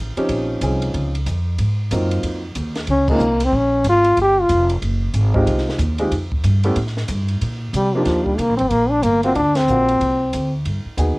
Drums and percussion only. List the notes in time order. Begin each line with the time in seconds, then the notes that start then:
0.17 ride
0.29 kick, ride
0.61 kick, hi-hat pedal, ride
0.82 ride
0.94 kick, ride
1.15 ride
1.26 kick, hi-hat pedal, ride
1.58 kick, ride
1.91 kick, hi-hat pedal, ride
2.11 ride
2.23 kick, ride
2.55 kick, hi-hat pedal, ride
2.75 snare, ride
2.87 kick, ride
3.08 kick, crash
3.20 hi-hat pedal
3.40 ride
3.52 kick
3.84 kick, hi-hat pedal, ride
4.04 ride
4.17 kick, ride
4.49 kick, hi-hat pedal, ride
4.69 ride
4.82 kick, ride
5.14 kick, hi-hat pedal, ride
5.34 kick
5.47 kick, ride
5.58 snare
5.69 snare
5.79 kick, hi-hat pedal, ride
5.98 ride
6.11 kick, ride
6.32 kick
6.44 kick, hi-hat pedal, ride
6.63 ride
6.76 kick, ride
6.87 snare
6.97 snare
7.08 kick, hi-hat pedal, ride
7.28 ride
7.41 kick, ride
7.74 kick, hi-hat pedal, ride
8.05 kick, snare, ride
8.26 kick
8.38 kick, hi-hat pedal, ride
8.59 ride
8.71 kick, ride
9.03 kick, hi-hat pedal, ride
9.23 ride
9.35 kick, ride
9.55 snare, ride
9.68 hi-hat pedal
9.89 ride
10.01 kick, ride
10.33 kick, hi-hat pedal, ride
10.65 kick, ride
10.98 kick, hi-hat pedal, ride